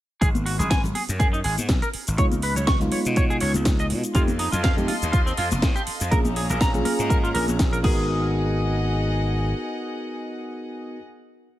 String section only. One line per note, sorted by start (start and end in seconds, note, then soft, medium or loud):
4.14 6.10 A4 medium
4.14 6.10 D#5 medium
4.14 7.80 F5 medium
4.14 6.10 C6 medium
6.12 7.83 G#4 medium
6.12 7.83 C#5 medium
6.12 7.83 A#5 medium
7.85 10.99 G#4 medium
7.85 11.00 D#5 medium
7.85 10.99 F#5 medium